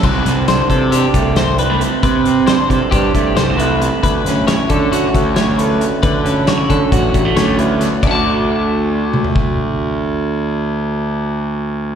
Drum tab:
CC |x-----------------|------------------|------------------|------------------|
HH |--x-x-x-x-x-x-x-x-|x-x-x-x-x-x-x-x-x-|x-x-x-x-x-x-x-x-x-|x-x-x-x-x-x-x-x-x-|
SD |--o-o-------o-----|----o-------o-----|--o-o-------o-----|----o-------o---o-|
T2 |------------------|------------------|------------------|------------------|
FT |------------------|------------------|------------------|------------------|
BD |o-----o---o-------|o-----o-o-o-------|o-----o---o-------|o-----o-o-o-------|

CC |x-----------------|------------------|
HH |------------------|------------------|
SD |------------------|------------------|
T2 |----------o-------|------------------|
FT |-----------o------|------------------|
BD |o-----------o-----|------------------|